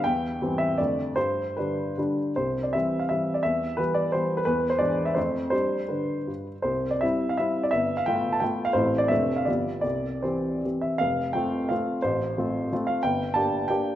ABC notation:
X:1
M:3/4
L:1/16
Q:1/4=168
K:C
V:1 name="Grand piano"
g6 e2 d4 | c4 B6 z2 | c3 d e3 f e3 d | e4 B2 d2 c3 B |
B3 c d3 e c4 | c4 B6 z2 | c3 d e3 f e3 d | e3 f g3 a g3 f |
c3 d e3 f d4 | d4 c4 z2 e2 | [K:F] f4 g4 f4 | c8 z2 f2 |
g4 a4 g4 |]
V:2 name="Grand piano"
E,,4 [E,G,C]4 [F,,D,A,D]4 | G,,4 [D,G,D]4 [D,G,D]4 | C,,4 [E,G,C]4 [E,G,C]4 | E,,4 [E,G,B,]4 [E,G,B,]4 |
E,,4 [E,^G,D]4 [F,,A,C]4 | [G,DG]4 D,4 G,,4 | C,,4 [G,CE]4 [G,CE]4 | G,,,4 [A,B,F]4 [A,B,F]4 |
[A,,,A,CE]4 [F,,,A,CD]4 [G,,,F,B,G]4 | C,,4 [E,CG]4 [E,CG]4 | [K:F] F,,,4 [A,CF]4 [A,CF]4 | A,,,4 [A,CF]4 [A,CF]4 |
G,,,4 [B,DG]4 [B,DG]4 |]